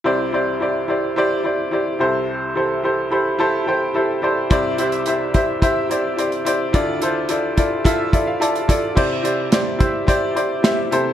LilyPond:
<<
  \new Staff \with { instrumentName = "Upright piano" } { \time 4/4 \key c \major \tempo 4 = 108 << { r1 | r4. b''8 a''8 g''8 e''8 d''8 | r1 | r2 r8 e''16 f''16 a''4 |
r1 | } \\ { <e' g' c'' d''>8 <e' g' c'' d''>8 <e' g' c'' d''>8 <e' g' c'' d''>8 <e' g' c'' d''>8 <e' g' c'' d''>8 <e' g' c'' d''>8 <e' g' a' c''>8~ | <e' g' a' c''>8 <e' g' a' c''>8 <e' g' a' c''>8 <e' g' a' c''>8 <e' g' a' c''>8 <e' g' a' c''>8 <e' g' a' c''>8 <e' g' a' c''>8 | <e' g' c'' d''>8 <e' g' c'' e''>8 <e' g' c'' e''>8 <e' g' c'' e''>8 <e' g' c'' e''>8 <e' g' c'' d''>8 <e' g' c'' d''>8 <e' g' c'' d''>8 | <e' f' a' d''>8 <e' f' a' c''>8 <e' f' a' d''>8 <e' f' a' d''>8 <e' f' a' e''>8 <e' f' a' d''>8 <e' f' a' d''>8 <e' f' a' d''>8 |
<e' g' c'' d''>8 <e' g' c'' d''>8 <e' g' c'' d''>8 <e' g' c'' e''>8 <e' g' c'' d''>8 <e' g' c'' d''>8 <e' g' c'' e''>8 <e' g' a' c''>8 | } >> }
  \new Staff \with { instrumentName = "Upright piano" } { \clef bass \time 4/4 \key c \major <c, c>2.~ <c, c>8 <c, c>8~ | <c, c>2.~ <c, c>8 r8 | <c, c>1 | <d, d>1 |
c4. r2 c8 | }
  \new DrumStaff \with { instrumentName = "Drums" } \drummode { \time 4/4 r4 r4 r4 r4 | r4 r4 r4 r4 | <hh bd>8 hh16 hh16 hh8 <hh bd>8 <hh bd>8 hh8 hh16 hh16 hh8 | <hh bd>8 hh8 hh8 <hh bd>8 <hh bd>8 <hh bd>8 hh16 hh16 <hh bd>8 |
<cymc bd>8 hh8 <hh sn>8 <hh bd>8 <hh bd>8 hh8 <hh sn>8 hh8 | }
>>